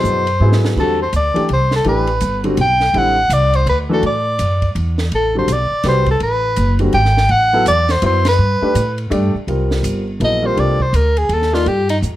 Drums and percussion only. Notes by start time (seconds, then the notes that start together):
0.04 hi-hat pedal
0.27 ride
0.52 snare
0.65 snare
0.77 kick, crash
1.13 hi-hat pedal, ride
1.36 ride
1.49 ride
1.71 snare
1.84 ride
2.07 ride
2.21 hi-hat pedal, ride
2.44 ride
2.57 ride
2.80 snare
2.94 ride
3.30 hi-hat pedal, ride
3.53 ride
3.67 ride
4.03 ride
4.39 hi-hat pedal, ride
4.62 kick, ride
4.75 ride
4.98 snare
5.12 ride
5.48 hi-hat pedal, ride
5.83 snare, ride
6.06 kick, ride
6.20 ride
6.56 hi-hat pedal, ride
6.79 ride
6.93 ride
7.05 snare
7.17 snare
7.29 ride
7.66 hi-hat pedal, ride
7.89 snare, ride
8.02 ride
8.25 snare, ride
8.75 hi-hat pedal, ride
8.98 ride
9.12 ride
9.48 ride
9.71 snare
9.84 hi-hat pedal, ride
10.21 ride
10.57 ride
10.80 kick
10.94 hi-hat pedal, ride
11.17 ride
11.29 ride
11.42 snare
11.54 snare
11.66 ride
11.89 ride
12.03 hi-hat pedal